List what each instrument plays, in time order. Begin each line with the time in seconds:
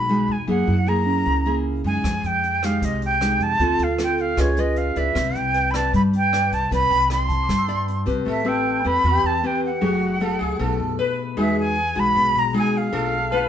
Already playing: upright bass B1, nylon-string guitar B2, tine electric piano D#4, flute B5
0.09 nylon-string guitar G#3 D#4 F#4
0.28 upright bass E2, flute G#5
0.47 upright bass F#2, nylon-string guitar F#3 A#3 E4 G#4, flute F#5
0.67 upright bass F#2, tine electric piano E4
0.87 nylon-string guitar A#3 E4 G#4, flute A#5
1.06 tine electric piano C#4
1.26 upright bass C#2, nylon-string guitar C#3
1.46 nylon-string guitar A#3 E4 G#4
1.84 upright bass F#2, nylon-string guitar G#3 D#4, flute G#5
2.04 upright bass F2, nylon-string guitar F3, kick, cross-stick, closed hi-hat
2.23 upright bass F2, flute G5, closed hi-hat
2.43 closed hi-hat
2.63 nylon-string guitar G#3 D#4 G4, flute F5, cross-stick, closed hi-hat
2.82 upright bass C2, nylon-string guitar C3, flute D#5, kick, closed hi-hat
3.02 flute G5, closed hi-hat
3.21 nylon-string guitar G#3 D#4 G4, cross-stick, closed hi-hat
3.40 upright bass F2, flute A5, closed hi-hat
3.59 upright bass D2, nylon-string guitar D3 C4 F4 A4, tine electric piano F4, kick, closed hi-hat
3.79 upright bass D2, closed hi-hat
3.83 flute F5
3.99 nylon-string guitar C4 F4 A4, cross-stick, closed hi-hat
4.03 flute G5
4.18 flute F5, closed hi-hat
4.37 upright bass C#2, nylon-string guitar C#4 F4 B4 D#5, tine electric piano G#4, flute C#5, kick, cross-stick, closed hi-hat
4.57 nylon-string guitar F4 B4 D#5, flute D#5, closed hi-hat
4.76 flute F5, closed hi-hat
4.96 upright bass C#2, nylon-string guitar E4 B4 D5, flute E5, closed hi-hat
5.15 upright bass C2, nylon-string guitar C4, kick, cross-stick, closed hi-hat
5.35 upright bass C2, flute G5, closed hi-hat
5.54 tine electric piano B4, closed hi-hat
5.71 nylon-string guitar E4 B4 D5, flute B5, cross-stick, closed hi-hat
5.76 flute A5
5.93 upright bass G2, nylon-string guitar G3, flute B5, kick, closed hi-hat
6.13 flute G5, closed hi-hat
6.32 nylon-string guitar E4 B4 D5, cross-stick, closed hi-hat
6.52 upright bass C2, flute A5, closed hi-hat
6.71 upright bass C2, nylon-string guitar C4 E4 B4 D5, flute B5, kick, closed hi-hat
6.90 upright bass C2, tine electric piano G5, closed hi-hat
7.10 nylon-string guitar E4 D5, flute C6, cross-stick, closed hi-hat
7.28 tine electric piano A5, kick, closed hi-hat
7.44 tine electric piano D6
7.48 upright bass G2, nylon-string guitar G3, kick, cross-stick, closed hi-hat
7.59 tine electric piano E6
7.68 nylon-string guitar E4 D5, closed hi-hat
7.88 closed hi-hat
8.06 upright bass C2, nylon-string guitar C4 G4 B4, kick, closed hi-hat
8.25 upright bass A1, nylon-string guitar A3, sitar A4
8.30 flute E5
8.45 nylon-string guitar C4 G4 B4, flute G5, tine electric piano E6
8.65 tine electric piano G5
8.80 tine electric piano B5
8.84 upright bass E2, nylon-string guitar C4 G4 B4, flute B5
9.04 upright bass E2, nylon-string guitar E3, sitar G4
9.23 upright bass E2, flute A5
9.43 nylon-string guitar C4 G4 B4, flute G5
9.65 flute F#5
9.81 upright bass F#1, nylon-string guitar F#3 A3 E4 G#4, sitar F#4
10.20 nylon-string guitar A3 E4 G#4, sitar A4, tine electric piano F#5
10.39 upright bass C#2, sitar G#4
10.59 upright bass B1, nylon-string guitar B2 A3 D#4, sitar A4
10.80 upright bass F#2
10.99 sitar B4
11.37 upright bass E2, nylon-string guitar E3 G#3 D#4 F#4, sitar G#4, flute E5
11.60 flute G#5
11.95 upright bass B1, nylon-string guitar G#3 D#4 F#4
12.00 flute B5
12.15 upright bass B1, nylon-string guitar B2
12.35 upright bass B1
12.39 flute A#5
12.53 nylon-string guitar G#3 D#4 F#4, sitar G#4
12.58 flute G#5
12.77 flute F5
12.92 upright bass B1, nylon-string guitar B2 A3 D4 F4, sitar A4
13.31 nylon-string guitar A3 D4 F4, sitar B4, tine electric piano A5